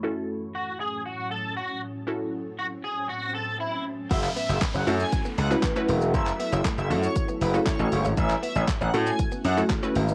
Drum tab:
CC |----------------|----------------|x---------------|----------------|
HH |----------------|----------------|x-o-x-o-x-o-x-o-|x-o-x-o-x-o-x-o-|
SH |----------------|----------------|xxxxxxxxxxxxxxxx|xxxxxxxxxxxxxxxx|
CP |----------------|----------------|-x--x-------x---|-x--x-------x---|
SD |----------------|----------------|----o-------o---|----o-------o---|
BD |----------------|----------------|o---o---o---o---|o---o---o---o---|

CC |----------------|
HH |x-o-x-o-x-o-x-o-|
SH |xxxxxxxxxxxxxxxx|
CP |-x--x-------x---|
SD |----o-------o---|
BD |o---o---o---o---|